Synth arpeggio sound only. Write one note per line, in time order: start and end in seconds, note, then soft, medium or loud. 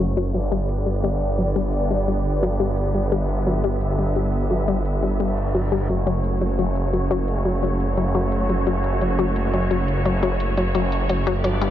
0.00 0.16 F#3 medium
0.17 0.24 F#3 loud
0.34 0.51 F#3 medium
0.51 0.58 G3 loud
0.86 1.02 G3 medium
1.04 1.15 G3 medium
1.38 1.55 F#3 medium
1.56 1.62 G3 loud
1.90 2.07 G3 medium
2.08 2.19 G3 medium
2.43 2.59 F#3 medium
2.60 2.67 G3 medium
2.94 3.11 G3 medium
3.12 3.23 G3 medium
3.46 3.63 F#3 medium
3.64 3.71 G3 loud
3.99 4.15 G3 medium
4.16 4.27 G3 medium
4.51 4.67 F#3 medium
4.68 4.75 G3 loud
5.03 5.19 G3 medium
5.20 5.31 G3 medium
5.55 5.71 F#3 medium
5.72 5.79 G3 loud
5.89 6.05 F#3 medium
6.07 6.13 F#3 loud
6.41 6.57 F#3 medium
6.59 6.70 F#3 medium
6.93 7.09 F#3 medium
7.11 7.17 F#3 loud
7.45 7.61 F#3 medium
7.63 7.74 F#3 medium
7.97 8.14 F#3 medium
8.15 8.21 F#3 medium
8.50 8.65 F#3 medium
8.67 8.78 F#3 medium
9.01 9.18 F#3 medium
9.19 9.26 F#3 loud
9.53 9.70 F#3 medium
9.71 9.82 F#3 medium
10.05 10.22 F#3 medium
10.23 10.30 F#3 loud
10.57 10.74 F#3 medium
10.75 10.86 F#3 medium
11.09 11.26 F#3 medium
11.27 11.34 F#3 loud
11.44 11.61 F#3 medium
11.61 11.68 G3 loud